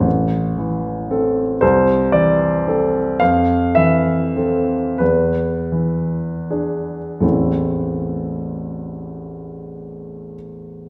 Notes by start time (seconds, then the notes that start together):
0.01 A1
0.57 E3
1.10 C4 A4
1.61 C2 C5
2.12 E3 D5
2.67 C4 A4
3.20 F2 F5
3.75 E3 E5
4.37 C4 A4
4.98 E2 B4
5.72 E3
6.50 D4 G#4
7.20 A1 E2 E3 A3 C4 E4 A4